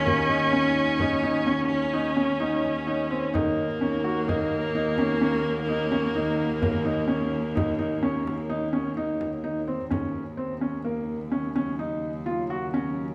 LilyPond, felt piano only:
\new Staff \with { instrumentName = "Felt piano" } { \time 7/4 \key ees \minor \tempo 4 = 128 bes8 ees'8 des'4 ees'8 ees'8 des'4 ees'8 des'8 ees'4 ees'8 c'8 | ees'4 des'8 ges'8 ees'4 ees'8 des'8 des'4 ees'8 des'8 ees'4 | bes8 ees'8 des'4 ees'8 ees'8 des'4 ees'8 des'8 ees'4 ees'8 c'8 | des'4 c'8 des'8 bes4 des'8 des'8 ees'4 f'8 ges'8 des'4 | }